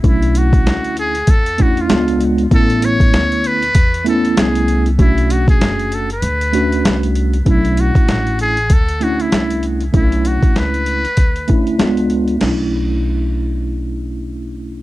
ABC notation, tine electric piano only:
X:1
M:4/4
L:1/16
Q:"Swing 16ths" 1/4=97
K:Bdor
V:1 name="Tine electric piano"
[A,CDE]6- [A,CDE] z3 [A,CDE]2 [G,B,D^E]4 | [A,B,CE]6- [A,B,CE] z3 [A,B,CE]6 | [A,CDF]6- [A,CDF] z3 [A,CDF]6 | [A,CDE]6- [A,CDE] z3 [A,CDE]6 |
[A,CDE]6- [A,CDE] z3 [A,CDE]2 [G,B,D^E]4 | [A,CDE]16 |]